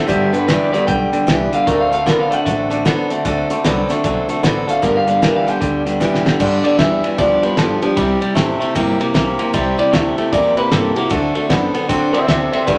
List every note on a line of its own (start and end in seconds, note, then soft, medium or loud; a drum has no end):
0.07 0.54 G1 medium
0.07 0.33 G2 medium
0.07 0.31 G2 medium
0.07 0.33 D3 medium
0.07 0.31 D3 loud
0.07 0.33 G3 medium
0.07 0.33 B3 medium
0.07 0.32 D4 medium
0.07 0.31 G4 medium
0.07 0.33 E5 medium
0.07 kick loud
0.07 closed hi-hat medium
0.33 0.46 G2 medium
0.33 0.47 D3 medium
0.33 0.47 G3 soft
0.33 0.48 B3 medium
0.33 0.48 D4 medium
0.33 0.48 G4 medium
0.33 0.46 B4 medium
0.33 0.47 D5 medium
0.33 closed hi-hat medium
0.47 0.71 G2 medium
0.47 0.73 G2 medium
0.47 0.73 D3 medium
0.47 0.71 E3 medium
0.47 0.73 G3 medium
0.47 0.73 B3 medium
0.47 0.73 D4 medium
0.47 0.72 G4 medium
0.47 0.71 B4 medium
0.47 0.72 D5 medium
0.47 snare loud
0.47 closed hi-hat medium
0.72 0.86 G2 medium
0.72 0.86 D3 medium
0.72 0.86 G3 soft
0.72 0.87 B3 medium
0.72 0.87 D4 medium
0.72 0.88 G4 medium
0.72 0.86 B4 medium
0.72 0.87 D5 medium
0.72 muted upright bass stroke medium
0.72 snare soft
0.72 closed hi-hat medium
0.87 1.09 B1 medium
0.87 1.10 G2 medium
0.87 1.10 D3 medium
0.87 1.12 G3 medium
0.87 1.12 B3 medium
0.87 1.12 D4 medium
0.87 1.11 G4 medium
0.87 1.26 G5 loud
0.87 kick loud
0.87 closed hi-hat medium
1.12 1.26 G2 medium
1.12 1.26 D3 medium
1.12 1.26 G3 soft
1.12 1.27 B3 soft
1.12 1.27 D4 medium
1.12 1.27 G4 medium
1.12 muted upright bass stroke medium
1.12 closed hi-hat medium
1.27 1.49 C2 medium
1.27 1.52 G2 medium
1.27 1.49 G2 medium
1.27 1.52 D3 medium
1.27 1.50 E3 loud
1.27 1.52 G3 medium
1.27 1.52 B3 medium
1.27 1.52 D4 medium
1.27 1.51 G4 medium
1.27 snare loud
1.27 closed hi-hat medium
1.52 1.65 G2 medium
1.52 1.65 D3 medium
1.52 1.67 G3 soft
1.52 1.67 B3 soft
1.52 1.67 D4 medium
1.52 1.67 G4 medium
1.52 1.67 F5 loud
1.52 muted upright bass stroke medium
1.52 closed hi-hat medium
1.66 2.12 D2 medium
1.66 1.89 D3 medium
1.66 1.92 D3 medium
1.66 1.92 F#3 medium
1.66 1.89 A3 loud
1.66 1.92 C4 medium
1.66 1.91 D4 medium
1.66 1.90 A4 medium
1.66 1.80 A#4 medium
1.66 kick loud
1.66 closed hi-hat medium
1.81 1.93 F5 medium
1.91 2.04 D3 medium
1.91 2.05 A3 medium
1.91 2.06 C4 soft
1.91 2.06 D4 soft
1.91 2.06 A4 medium
1.91 2.06 F5 loud
1.91 closed hi-hat medium
2.06 2.29 D3 medium
2.06 2.31 D3 medium
2.06 2.31 F#3 medium
2.06 2.29 B3 loud
2.06 2.31 C4 medium
2.06 2.31 D4 medium
2.06 2.30 A4 medium
2.06 2.19 A#4 loud
2.06 snare loud
2.06 closed hi-hat medium
2.20 2.33 F5 medium
2.31 2.44 D3 medium
2.31 2.44 A3 medium
2.31 2.45 C4 soft
2.31 2.46 D4 medium
2.31 2.46 A4 medium
2.31 3.48 F#5 loud
2.31 muted upright bass stroke medium
2.31 closed hi-hat medium
2.45 2.91 A1 medium
2.45 2.68 D3 medium
2.45 2.71 F#3 medium
2.45 2.68 A3 medium
2.45 2.71 C4 medium
2.45 2.70 D4 medium
2.45 2.69 A4 medium
2.45 kick loud
2.45 closed hi-hat medium
2.70 2.84 D3 medium
2.70 2.84 A3 medium
2.70 2.85 C4 soft
2.70 2.85 D4 medium
2.70 2.85 A4 medium
2.70 closed hi-hat medium
2.85 3.10 D3 medium
2.85 3.08 D3 medium
2.85 3.10 F#3 loud
2.85 3.08 B3 loud
2.85 3.10 C4 medium
2.85 3.10 D4 loud
2.85 3.09 A4 loud
2.85 snare loud
2.85 closed hi-hat medium
3.10 3.23 D3 medium
3.10 3.24 A3 medium
3.10 3.24 C4 medium
3.10 3.25 D4 medium
3.10 3.25 A4 medium
3.10 muted upright bass stroke medium
3.10 closed hi-hat medium
3.25 3.42 D2 medium
3.25 3.50 D3 loud
3.25 3.47 D3 medium
3.25 3.50 F#3 medium
3.25 3.48 A3 loud
3.25 3.50 C4 loud
3.25 3.50 D4 medium
3.25 3.49 A4 medium
3.25 kick loud
3.25 closed hi-hat medium
3.50 3.63 D3 medium
3.50 3.64 A3 medium
3.50 3.64 C4 medium
3.50 3.65 D4 medium
3.50 3.65 A4 medium
3.50 muted upright bass stroke medium
3.50 closed hi-hat medium
3.64 3.85 C2 medium
3.64 3.89 D3 medium
3.64 3.87 D3 medium
3.64 3.89 F#3 loud
3.64 3.87 B3 medium
3.64 3.90 C4 loud
3.64 3.89 D4 loud
3.64 3.87 A4 loud
3.64 snare loud
3.64 closed hi-hat medium
3.88 4.03 D3 medium
3.88 4.03 A3 medium
3.88 4.03 C4 medium
3.88 4.04 D4 medium
3.88 4.03 A4 medium
3.88 muted upright bass stroke medium
3.88 snare soft
3.88 closed hi-hat medium
4.04 4.25 B1 medium
4.04 4.27 D3 medium
4.04 4.28 F#3 medium
4.04 4.27 A3 medium
4.04 4.29 C4 medium
4.04 4.29 D4 medium
4.04 4.27 A4 medium
4.04 kick loud
4.04 closed hi-hat medium
4.28 4.42 D3 medium
4.28 4.42 A3 medium
4.28 4.43 C4 medium
4.28 4.43 D4 medium
4.28 4.43 A4 medium
4.28 muted upright bass stroke medium
4.28 closed hi-hat medium
4.43 4.64 A1 medium
4.43 4.68 D3 medium
4.43 4.66 D3 medium
4.43 4.68 F#3 loud
4.43 4.66 B3 medium
4.43 4.68 C4 medium
4.43 4.68 D4 loud
4.43 4.67 A4 loud
4.43 snare loud
4.43 closed hi-hat medium
4.67 4.81 D3 medium
4.67 4.81 A3 medium
4.67 4.83 C4 soft
4.67 4.82 D4 soft
4.67 4.83 A4 medium
4.67 4.83 F5 medium
4.67 muted upright bass stroke medium
4.67 closed hi-hat medium
4.82 5.28 G1 medium
4.82 5.05 G2 medium
4.82 5.07 G2 medium
4.82 5.05 D3 medium
4.82 5.07 D3 medium
4.82 5.07 G3 medium
4.82 5.07 B3 medium
4.82 5.06 D4 medium
4.82 5.06 G4 medium
4.82 4.95 A#4 loud
4.82 kick loud
4.82 closed hi-hat medium
4.97 5.09 F5 medium
5.07 5.20 G2 medium
5.07 5.21 D3 medium
5.07 5.21 G3 soft
5.07 5.22 B3 medium
5.07 5.22 D4 medium
5.07 5.22 G4 medium
5.07 5.22 F5 loud
5.07 closed hi-hat medium
5.22 5.44 G2 loud
5.22 5.47 G2 medium
5.22 5.47 D3 medium
5.22 5.44 E3 loud
5.22 5.47 G3 medium
5.22 5.47 B3 medium
5.22 5.46 D4 medium
5.22 5.45 G4 medium
5.22 5.35 A#4 loud
5.22 snare loud
5.22 closed hi-hat medium
5.36 5.49 F5 medium
5.46 5.59 G2 medium
5.46 5.59 D3 medium
5.46 5.60 G3 medium
5.46 5.61 B3 soft
5.46 5.61 D4 medium
5.46 5.61 G4 medium
5.46 6.38 G5 loud
5.46 muted upright bass stroke medium
5.46 closed hi-hat medium
5.60 6.06 D2 medium
5.60 5.83 G2 medium
5.60 5.83 D3 medium
5.60 5.86 G3 medium
5.60 5.86 B3 medium
5.60 5.86 D4 medium
5.60 5.85 G4 medium
5.60 kick loud
5.60 closed hi-hat medium
5.85 5.99 G2 medium
5.85 5.99 D3 medium
5.85 5.99 G3 soft
5.85 6.00 B3 medium
5.85 6.00 D4 medium
5.85 6.01 G4 medium
5.85 closed hi-hat medium
6.00 6.25 G2 medium
6.00 6.23 G2 medium
6.00 6.25 D3 medium
6.00 6.23 E3 loud
6.00 6.25 G3 medium
6.00 6.25 B3 loud
6.00 6.25 D4 medium
6.00 6.24 G4 loud
6.00 snare medium
6.15 snare medium
6.25 6.39 G2 medium
6.25 6.39 D3 medium
6.25 6.39 G3 soft
6.25 6.39 B3 medium
6.25 6.40 D4 medium
6.25 6.40 G4 medium
6.25 muted upright bass stroke medium
6.25 snare loud
6.40 6.64 G2 medium
6.40 6.62 G2 medium
6.40 6.64 G2 medium
6.40 6.65 D3 medium
6.40 6.62 D3 medium
6.40 6.65 G3 medium
6.40 6.64 B3 medium
6.40 6.63 D4 loud
6.40 6.63 G4 medium
6.40 kick loud
6.40 crash loud
6.64 6.77 G2 medium
6.64 6.78 D3 medium
6.64 6.78 G3 soft
6.64 6.79 B3 soft
6.64 6.79 D4 soft
6.64 6.79 G4 medium
6.64 6.78 D5 loud
6.64 muted upright bass stroke medium
6.64 ride medium
6.78 7.03 E2 medium
6.78 7.01 G2 medium
6.78 7.02 E3 loud
6.78 7.04 G3 medium
6.78 7.04 B3 medium
6.78 7.03 D4 medium
6.78 7.03 G4 medium
6.78 7.17 E5 loud
6.78 snare loud
6.78 ride medium
7.03 7.17 G2 medium
7.03 7.17 E3 medium
7.03 7.17 G3 soft
7.03 7.18 B3 medium
7.03 7.18 D4 medium
7.03 7.19 G4 medium
7.03 muted upright bass stroke medium
7.03 ride medium
7.18 7.42 D2 medium
7.18 7.40 G2 medium
7.18 7.43 G2 medium
7.18 7.43 D3 medium
7.18 7.41 F3 loud
7.18 7.43 G3 medium
7.18 7.43 B3 medium
7.18 7.42 D4 medium
7.18 7.42 G4 medium
7.18 7.44 D5 medium
7.18 kick loud
7.18 snare soft
7.18 ride medium
7.42 7.56 G2 medium
7.42 7.56 F3 medium
7.42 7.56 G3 soft
7.42 7.57 B3 soft
7.42 7.58 D4 medium
7.42 7.58 G4 medium
7.42 7.58 B4 medium
7.42 muted upright bass stroke medium
7.42 ride medium
7.57 7.81 G1 loud
7.57 7.80 G2 medium
7.57 7.80 F3 medium
7.57 7.82 G3 medium
7.57 7.82 B3 medium
7.57 7.81 D4 medium
7.57 7.80 G4 medium
7.57 7.83 A4 medium
7.57 snare loud
7.57 ride medium
7.81 7.96 G2 medium
7.81 7.96 F3 medium
7.81 7.96 G3 soft
7.81 7.97 B3 soft
7.81 7.97 D4 soft
7.81 7.97 G4 medium
7.81 8.21 G4 loud
7.81 muted upright bass stroke medium
7.81 ride medium
7.96 8.20 C2 medium
7.96 8.19 C3 medium
7.96 8.21 C3 medium
7.96 8.19 G3 loud
7.96 8.22 G3 medium
7.96 8.21 C4 medium
7.96 8.21 E4 medium
7.96 8.19 G4 medium
7.96 kick loud
7.96 ride medium
8.20 8.34 C3 medium
8.20 8.35 G3 medium
8.20 8.35 C4 soft
8.20 8.36 E4 medium
8.20 8.36 G4 medium
8.20 muted upright bass stroke medium
8.20 ride medium
8.35 8.59 A1 loud
8.35 8.58 C3 medium
8.35 8.60 G3 medium
8.35 8.58 A3 loud
8.35 8.61 C4 medium
8.35 8.61 E4 medium
8.35 8.59 G4 medium
8.35 snare loud
8.35 ride medium
8.60 8.73 C3 medium
8.60 8.74 A3 medium
8.60 8.75 C4 medium
8.60 8.75 E4 medium
8.60 8.75 G4 medium
8.60 muted upright bass stroke medium
8.60 ride medium
8.75 8.99 G1 medium
8.75 8.97 C3 medium
8.75 9.00 C3 medium
8.75 9.00 G3 loud
8.75 8.98 A#3 loud
8.75 9.00 C4 medium
8.75 8.99 E4 loud
8.75 8.98 G4 loud
8.75 kick loud
8.75 ride medium
8.99 9.13 C3 medium
8.99 9.13 A#3 medium
8.99 9.14 C4 medium
8.99 9.14 E4 medium
8.99 9.14 G4 medium
8.99 muted upright bass stroke medium
8.99 ride medium
9.14 9.38 B1 loud
9.14 9.37 C3 medium
9.14 9.39 G3 medium
9.14 9.37 A#3 loud
9.14 9.39 C4 medium
9.14 9.39 E4 medium
9.14 9.38 G4 medium
9.14 snare loud
9.14 ride medium
9.39 9.52 C3 medium
9.39 9.52 A#3 medium
9.39 9.53 C4 medium
9.39 9.53 E4 medium
9.39 9.53 G4 medium
9.39 muted upright bass stroke medium
9.39 ride medium
9.53 9.78 C2 medium
9.53 9.78 C3 loud
9.53 9.76 C3 medium
9.53 9.78 G3 medium
9.53 9.76 G3 loud
9.53 9.78 C4 medium
9.53 9.78 E4 loud
9.53 9.77 G4 loud
9.53 kick loud
9.53 ride medium
9.78 9.91 C3 medium
9.78 9.92 G3 medium
9.78 9.93 C4 soft
9.78 9.93 E4 medium
9.78 9.93 G4 medium
9.78 9.94 D5 loud
9.78 muted upright bass stroke medium
9.78 ride medium
9.92 10.17 D2 medium
9.92 10.15 C3 loud
9.92 10.18 G3 medium
9.92 10.15 A3 loud
9.92 10.18 C4 medium
9.92 10.18 E4 medium
9.92 10.17 G4 medium
9.92 10.32 E5 loud
9.92 snare loud
9.92 ride medium
10.18 10.31 C3 medium
10.18 10.31 A3 medium
10.18 10.33 C4 soft
10.18 10.33 E4 medium
10.18 10.32 G4 medium
10.18 muted upright bass stroke medium
10.18 ride medium
10.32 10.56 E2 medium
10.32 10.55 C3 medium
10.32 10.57 C3 medium
10.32 10.57 G3 medium
10.32 10.55 A#3 medium
10.32 10.58 C4 medium
10.32 10.57 E4 loud
10.32 10.56 G4 medium
10.32 10.56 D5 loud
10.32 kick loud
10.32 snare soft
10.32 ride medium
10.57 10.70 C3 medium
10.57 10.71 A#3 medium
10.57 10.70 C4 soft
10.57 10.70 E4 medium
10.57 10.71 G4 medium
10.57 10.71 B4 medium
10.57 muted upright bass stroke medium
10.57 ride medium
10.70 10.96 G2 loud
10.70 10.94 C3 medium
10.70 10.95 G3 medium
10.70 10.94 A#3 loud
10.70 10.96 C4 medium
10.70 10.96 E4 medium
10.70 10.94 G4 medium
10.70 10.96 A4 loud
10.70 snare loud
10.70 ride medium
10.96 11.09 C3 medium
10.96 11.10 A#3 medium
10.96 11.09 C4 soft
10.96 11.10 E4 medium
10.96 11.34 F#4 loud
10.96 11.10 G4 medium
10.96 muted upright bass stroke medium
10.96 ride medium
11.09 11.35 D2 medium
11.09 11.35 D3 medium
11.09 11.33 D3 medium
11.09 11.35 F#3 medium
11.09 11.33 A3 loud
11.09 11.35 C4 medium
11.09 11.35 D4 medium
11.09 11.34 A4 medium
11.09 kick loud
11.09 ride medium
11.35 11.48 D3 medium
11.35 11.48 A3 medium
11.35 11.49 C4 soft
11.35 11.50 D4 medium
11.35 11.50 A4 medium
11.35 muted upright bass stroke medium
11.35 ride medium
11.50 11.74 F#2 medium
11.50 11.72 D3 medium
11.50 11.74 F#3 medium
11.50 11.72 B3 loud
11.50 11.75 C4 medium
11.50 11.74 D4 medium
11.50 11.73 A4 medium
11.50 kick medium
11.50 snare loud
11.50 ride medium
11.74 11.88 D3 medium
11.74 11.88 B3 medium
11.74 11.89 C4 medium
11.74 11.89 D4 medium
11.74 11.89 A4 medium
11.74 muted upright bass stroke medium
11.74 ride medium
11.89 12.11 D3 medium
11.89 12.14 D3 medium
11.89 12.14 F#3 medium
11.89 12.11 C4 loud
11.89 12.14 C4 loud
11.89 12.13 D4 loud
11.89 12.12 A4 loud
11.89 kick loud
11.89 snare soft
11.89 ride medium
12.13 12.26 D3 medium
12.13 12.27 C4 medium
12.13 12.28 C4 soft
12.13 12.28 D4 medium
12.13 12.28 A4 medium
12.13 12.26 C5 medium
12.13 12.27 E5 loud
12.13 muted upright bass stroke soft
12.13 ride medium
12.27 12.53 D2 loud
12.27 12.50 D3 medium
12.27 12.53 F#3 medium
12.27 12.50 C4 medium
12.27 12.53 C4 medium
12.27 12.52 D4 medium
12.27 12.51 A4 medium
12.27 12.51 C5 medium
12.27 12.52 E5 medium
12.27 snare loud
12.27 ride medium
12.52 12.66 D3 medium
12.52 12.66 C4 medium
12.52 12.67 C4 soft
12.52 12.67 D4 soft
12.52 12.67 A4 medium
12.52 12.66 C5 medium
12.52 12.66 E5 loud
12.52 muted upright bass stroke medium
12.52 ride medium
12.66 12.78 G1 medium
12.66 12.78 G2 medium
12.66 12.78 D3 medium
12.66 12.78 D3 loud
12.66 12.78 G3 medium
12.66 12.78 B3 medium
12.66 12.78 D4 medium
12.66 12.78 G4 medium
12.66 12.78 B4 medium
12.66 12.78 D5 medium
12.66 kick loud
12.66 ride medium